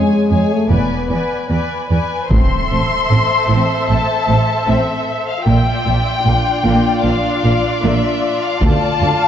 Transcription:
Already playing: G#3 G#4 C#5 G#5
0.29 F2 G#4 C#5 G#5
0.51 A3
0.69 E1 E2 B3 B4 D5 G#5
1.09 E2 B4 D5 G#5
1.50 E2 B4 D5 G#5
1.90 E2 B4 D5 G#5
2.30 A1 A2 C4 A4 C5 E5 C6, taiko, impact
2.71 A1 A2 C4
3.10 A1 A2 C4
3.49 A1 A2 C4
3.89 A1 A2 C4 A5
4.28 A1 A2 C4
4.68 A1 A2 C4 E5
5.27 F5
5.46 A#1 A#2 A#3 F4 D5 G5
5.86 A#1 A#2 A#3
6.25 A#1 A#2 A#3 D4
6.65 A#1 A#2 A#3
7.04 A#1 A#2 A#3 F5
7.44 A#1 A#2 A#3
7.83 A#1 A#2 A#3 E5
8.42 F5
8.62 D2 A3 F5 A5, taiko
9.01 D2 A3

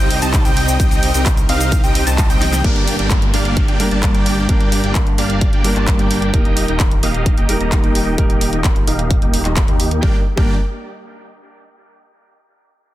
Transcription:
Already playing: G3 C4 D#4 C5 D#5
0.00 C2 C4 D#4 G4 D#5 G5
0.11 open hi-hat
0.22 C2 C4 D#4 G4 D#5 A5, closed hi-hat, cabasa
0.34 kick, clap, closed hi-hat, cabasa
0.45 C2 C4 D#4 G4 D#5 G5, closed hi-hat, cabasa
0.57 open hi-hat
0.68 cabasa
0.80 C2 C4 D#4 G4 A#4 D#5 G5, kick, closed hi-hat, cabasa
0.91 closed hi-hat, cabasa
1.03 open hi-hat
1.14 C2 C4 D#4 G4 D#5 G5, closed hi-hat, cabasa
1.26 kick, clap, closed hi-hat, cabasa
1.37 closed hi-hat, cabasa
1.49 C2 C4 D#4 G4 D#5 F5, open hi-hat
1.61 closed hi-hat, cabasa
1.72 kick, closed hi-hat, cabasa
1.84 C2 C4 D#4 G4 D#5 G5, closed hi-hat, cabasa
1.95 open hi-hat
2.07 C2 C4 D#4 G4 D#5 A5, clap, closed hi-hat, cabasa
2.18 kick, clap, closed hi-hat, cabasa
2.30 C2 C4 D#4 G4 D#5 G5, closed hi-hat, cabasa
2.42 snare, open hi-hat
2.53 snare, closed hi-hat, cabasa
2.63 G1 G2 G3 A#3 D4 G4 A#4 D5 G5, kick, closed hi-hat, downlifter
2.76 closed hi-hat
2.88 open hi-hat
2.99 G1 A#3 D4 G4 D5 G5, closed hi-hat
3.10 kick, clap, closed hi-hat
3.22 closed hi-hat
3.34 G1 A#3 D4 G4 D5 F5, open hi-hat
3.45 closed hi-hat
3.57 kick, closed hi-hat
3.68 G1 A#3 D4 G4 D5 G5, closed hi-hat
3.79 G2 G3 A#3 D4 A#4, open hi-hat
3.91 G1 A#3 D4 G4 D5 A5, closed hi-hat
4.02 G2 G3 A#3 D4 A#4, kick, clap, closed hi-hat
4.14 G1 A#3 D4 G4 D5 G5, closed hi-hat
4.26 open hi-hat
4.48 G1 G2 G3 A#3 D4 G4 A#4 D5 G5, kick, closed hi-hat
4.61 closed hi-hat
4.72 open hi-hat
4.84 G1 A#3 D4 G4 D5 G5, closed hi-hat
4.95 kick, clap, closed hi-hat
5.07 closed hi-hat
5.18 G1 A#3 D4 G4 D5 F5, open hi-hat
5.30 closed hi-hat
5.41 kick, closed hi-hat
5.53 G1 A#3 D4 G4 D5 G5, closed hi-hat
5.64 G2 G3 A#3 D4 A#4, open hi-hat
5.76 G1 A#3 D4 G4 D5 A5, clap, closed hi-hat
5.87 G2 G3 A#3 D4 A#4, kick, clap, closed hi-hat
5.99 G1 A#3 D4 G4 D5 G5, closed hi-hat
6.11 open hi-hat
6.22 closed hi-hat
6.33 D#1 G3 A#3 D#4 G4 A#4 D#5 G5, kick, closed hi-hat
6.45 closed hi-hat
6.57 open hi-hat
6.68 D#1 A#3 D#4 G4 D#5 G5, closed hi-hat
6.80 kick, clap, closed hi-hat
6.91 closed hi-hat
7.03 D#1 A#3 D#4 G4 D#5 F5, open hi-hat
7.14 closed hi-hat
7.26 kick, closed hi-hat
7.37 D#1 A#3 D#4 G4 D#5 G5, closed hi-hat
7.48 G3 A#3 D#4 A#4, open hi-hat
7.61 D#1 A#3 D#4 G4 D#5 A#5, closed hi-hat
7.72 G3 A#3 D#4 A#4, kick, clap, closed hi-hat
7.84 D#1 A#3 D#4 G4 D#5 G5, closed hi-hat
7.95 open hi-hat
8.17 D#1 G3 A#3 D#4 G4 A#4 D#5 G5, kick, closed hi-hat
8.30 closed hi-hat
8.41 open hi-hat
8.53 D#1 A#3 D#4 G4 D#5 G5, closed hi-hat
8.64 kick, clap, closed hi-hat
8.76 closed hi-hat
8.87 D#1 A#3 D#4 G4 D#5 F5, open hi-hat
8.99 closed hi-hat
9.11 kick, closed hi-hat
9.22 D#1 A#3 D#4 G4 D#5 G5, closed hi-hat
9.34 open hi-hat
9.45 D#1 A#3 D#4 G4 D#5 A#5, clap, closed hi-hat
9.56 kick, clap, closed hi-hat
9.68 D#2 A#3 D#4 G4 D#5 G5, closed hi-hat
9.80 open hi-hat
9.91 closed hi-hat
10.01 G1 G3 A#3 D4 G4 A#4 D5 G5, kick
10.36 G1 G3 A#3 D4 G4 A#4 D5 G5, kick

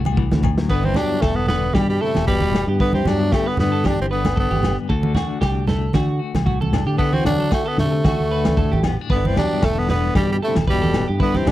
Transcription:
Already playing: C2 A2 D3 A3 D4 F#4
0.05 high conga, low agogo
0.17 E3, kick
0.31 D2, snare, high conga
0.43 F#3, kick, low conga, low agogo
0.58 snare
0.69 G1 G2 D3 B3 D4 B4, kick, crash
0.74 E4
0.83 E3 C4, high conga
0.94 F#3 B3 D4 G4, snare, high conga, low conga, low agogo
1.21 E1 D3 A3 A4, kick, snare, low agogo
1.35 D3 B3
1.47 D3 B3 B4, snare, low conga
1.73 G2 B2 G3 G4, muted clean electric guitar stroke, kick, snare, high conga, low agogo
1.87 B2 G3
2.00 C3 A3 E4 A4
2.15 E1, snare, high conga, low agogo
2.27 G2 B2 G3 B4, kick, snare
2.41 B4, high conga
2.53 B3, snare, low conga, low agogo
2.67 G2 G4
2.80 G2 D3 B3 E4 B4, kick
2.93 C4 G4, high conga
2.97 E3
3.05 G2 F#3 B3 D4, snare, high conga, low conga, low agogo
3.32 D3 A3 G4, kick, snare, low agogo
3.46 D3 B3 B4
3.57 G2 D3 B3, snare, low conga
3.72 A4
3.84 G3 D4 G4, kick, snare, high conga, low agogo
4.00 G1 E3 C4
4.11 D3 B3 B4, muted clean electric guitar stroke
4.25 snare, high conga, low agogo
4.36 G2 D3 B3 A4, kick
4.51 G1 G4, high conga
4.63 B3, snare, low conga, low agogo
4.89 D2 D3 A3 D4 F#4 A4, kick
5.03 high conga
5.15 D4 F#4, snare, high conga, low conga, low agogo
5.41 C2 G4, kick, snare, low agogo
5.67 A3 A4, snare, low conga
5.93 D3 F#4, muted clean electric guitar stroke, kick, snare, high conga, low agogo
6.19 F#4
6.35 C2, snare, high conga, low agogo
6.45 A2 F#4, kick
6.61 A4, high conga
6.73 D4, snare, low conga, low agogo
6.86 D3 G4
6.98 D3 B3 E4 A4, kick
7.13 E3 C4 F#4, high conga
7.25 D3 F#3 B3 D4, snare, high conga, low conga, low agogo
7.40 A4, muted clean electric guitar stroke
7.51 A3 F#4, kick, snare, low agogo
7.56 D3
7.66 B3 A4
7.70 D3
7.78 D3 A3, snare, low conga
7.83 C3
7.92 muted clean electric guitar stroke
8.04 A3 F#4, kick, snare, high conga, low agogo
8.10 D3
8.20 D2
8.31 F#4 B4
8.45 snare, high conga, low agogo
8.57 A2 A4, kick, low conga
8.71 A1 G4, high conga
8.83 B3, snare, low conga, low agogo
9.01 D4
9.10 G1 G2 D3 B3 B4, kick
9.14 D3 B3 D4 E4
9.25 E3 C4, high conga
9.36 F#3 D4 G4, snare, high conga, low conga, low agogo
9.41 B3
9.62 E1 A3 A4, kick, snare, low agogo
9.67 D3
9.79 D3 B3
9.88 D3 B3 B4, snare, low conga
9.94 D3
10.15 G2 G3 D4 G4, kick, snare, high conga, low agogo
10.19 B2
10.32 B2 G3
10.42 C3 A3 E4 A4
10.55 E1, snare, high conga, low agogo
10.67 G2 B2 G3 B4, kick
10.82 A4, high conga
10.94 B3, snare, low conga, low agogo
11.08 G2 G4
11.20 G2 D3 B3 E4 B4, kick
11.34 E3 C4 G4, snare, high conga
11.46 G2 F#3 D4, snare, high conga, low conga, low agogo

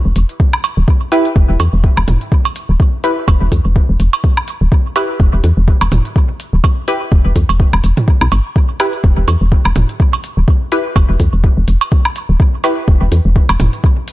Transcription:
0.05 E1
0.16 E1, open hi-hat
0.29 open hi-hat
0.40 kick
0.53 low woodblock
0.64 open hi-hat, cowbell
0.77 D1
0.88 kick
1.12 E4 G4 B4, open hi-hat
1.25 open hi-hat
1.36 E1, kick
1.49 E1
1.60 E2, open hi-hat, cowbell
1.73 E1
1.84 kick
1.97 E1, low woodblock
2.08 E1, mid tom, open hi-hat
2.21 open hi-hat
2.32 kick
2.45 cowbell
2.56 open hi-hat
2.69 D1
2.80 kick
3.04 E4 G4 B4, open hi-hat
3.28 E1, kick, cowbell
3.41 E1
3.52 E2, kick, open hi-hat
3.65 E1
3.76 kick
3.89 E1
4.00 E1, open hi-hat
4.13 open hi-hat, cowbell
4.24 kick
4.37 low woodblock
4.48 open hi-hat
4.61 D1
4.72 kick
4.96 E4 G4 B4, open hi-hat, cowbell
5.20 E1, kick
5.33 E1
5.44 E2, open hi-hat
5.57 E1
5.68 kick
5.81 E1, cowbell, low woodblock
5.92 E1, mid tom, open hi-hat
6.05 open hi-hat
6.16 kick
6.40 open hi-hat
6.53 D1
6.64 kick, cowbell
6.88 E4 G4 B4, open hi-hat
7.12 E1, kick
7.25 E1
7.36 E2, kick, open hi-hat
7.49 E1, cowbell
7.60 kick
7.73 E1, low woodblock
7.84 E1, open hi-hat
7.97 mid tom, open hi-hat
8.08 kick
8.21 B1, low woodblock
8.32 G1, open hi-hat, cowbell
8.56 kick
8.80 E4 G4 B4, open hi-hat, low woodblock
8.93 open hi-hat
9.04 E1, kick
9.17 E1
9.28 E2, open hi-hat, cowbell
9.41 E1
9.52 kick
9.65 E1, low woodblock
9.76 E1, mid tom, open hi-hat
9.89 open hi-hat
10.00 kick
10.13 cowbell
10.24 open hi-hat
10.37 D1
10.48 kick
10.72 E4 G4 B4, open hi-hat
10.96 E1, kick, cowbell
11.09 E1
11.20 E2, kick, open hi-hat
11.33 E1
11.44 kick
11.57 E1
11.68 E1, open hi-hat
11.81 open hi-hat, cowbell
11.92 kick
12.05 low woodblock
12.16 open hi-hat
12.29 D1
12.40 kick
12.64 E4 G4 B4, open hi-hat, cowbell
12.88 E1, kick
13.01 E1
13.12 E2, open hi-hat
13.25 E1
13.36 kick
13.49 E1, cowbell, low woodblock
13.60 E1, mid tom, open hi-hat
13.73 open hi-hat
13.84 kick
14.08 open hi-hat

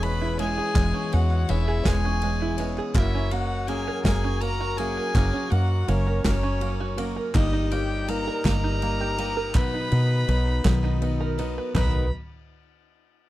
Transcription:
Already playing: E1 E2 E3 G#3 B3 C#4 E4 G#4 B4 C#5 E5
0.03 G#3 C#4 E4 B4 C#5 B5, ride
0.22 E4
0.37 G#3 B3 C#4 E4 G#4 B4 C#5 G#5, ride
0.58 G#4
0.74 E1 E2 E3 G#3 B3 C#4 E4 G#4 B4 C#5, kick, clap, ride
0.94 C#4
1.12 E2 G#3 C#4 E4 F#4 B4 C#5 F#5, clap, ride
1.31 clap
1.48 E1 G#3 B3 C#4 E4 G#4 B4 C#5 E5, clap, ride
1.68 G#4, clap
1.84 E1 E3 G#3 B3 C#4 E4 G#4 B4 C#5 G#5, kick, snare, clap, ride
2.05 C#4
2.22 G#3 C#4 E4 B4 C#5, ride
2.41 E4, clap
2.57 G#3 B3 C#4 E4 G#4 B4 C#5 E5, clap, ride
2.78 G#4, clap
2.94 F#1 F#2 F#3 A#3 C#4 E4 F#4 A#4 C#5 E5, kick, clap, ride
3.15 C#4
3.31 F#3 A#3 C#4 F#4 A#4 D#5 F#5, clap, ride
3.67 F#3 A#3 C#4 F#4 G#4 A#4 C#5 G#5, ride
3.88 A#4
4.04 F#1 F#3 A#3 C#4 F#4 G#4 A#4 E5 G#5, kick, snare, clap, ride
4.24 C#4
4.41 F#3 A#3 C#4 A#4 C#5 A#5, ride
4.61 F#4
4.77 F#3 A#3 C#4 F#4 G#4 A#4 E5 G#5, ride
4.97 A#4
5.14 F#1 F#2 F#3 A#3 C#4 F#4 A#4 C#5, kick, clap, ride
5.33 C#4
5.50 F#2 F#3 A#3 C#4 F#4 A#4 D#5 F#5, ride
5.87 F#1 F#3 A#3 C#4 F#4 A#4 C#5 E5, ride
6.07 A#4
6.24 F#1 F#3 A#3 C#4 F#4 A#4 C#5, kick, snare, clap, ride
6.43 C#4
6.60 F#3 A#3 C#4 A#4 C#5, ride
6.80 F#4
6.96 F#3 A#3 C#4 F#4 A#4 C#5, ride
7.16 A#4
7.34 G1 G2 G3 A#3 D#4 G4 A#4 D#5, kick, clap, ride
7.53 D#4
7.71 G3 A#3 D#4 G4 A#4 C#5 G5, clap, ride
8.08 G3 A#3 D#4 G4 A#4 D#5 A#5, ride
8.27 A#4
8.45 G1 G3 A#3 D#4 G4 A#4 D#5 A#5, kick, snare, clap, ride
8.64 D#4
8.82 G3 A#3 D#4 A#4 D#5, ride
9.01 G4
9.18 G3 A#3 D#4 G4 A#4 D#5, ride
9.37 A#4
9.55 B1 B2 D#3 F#3 B3 D#4 A#4 B4 D#5 B5, kick, clap, ride
9.74 D#4
9.91 B2 F#3 B3 D#4 A#4 D#5, ride
10.27 B1 F#3 B3 D#4 A#4 C#5, ride
10.47 clap
10.64 B1 B2 D#3 F#3 B3 D#4 A#4 D#5, kick, snare, clap, ride
10.84 D#4, clap
11.01 F#3 B3 D#4 A#4 D#5, ride
11.20 A#4
11.38 F#3 B3 D#4 A#4 D#5, clap, ride
11.58 B4
11.74 B1 B2 D#3 F#3 B3 D#4 A#4 B4 D#5 B5, kick, clap, floor tom, splash

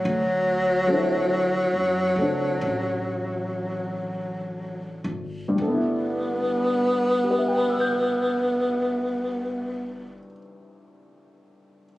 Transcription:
Already playing: F#3
0.05 D2
0.87 F#3 A3 C4 D4
0.93 E4
1.74 F#2
2.16 C#2 A3
2.21 C4 D4
2.61 A1
5.04 G#1
5.48 G2
5.55 G1 G3
5.60 A3 B3
5.67 B3
5.74 E4
7.24 G4
7.31 B4
7.38 E5
7.48 G5
7.58 B5
7.69 E6
7.80 G6

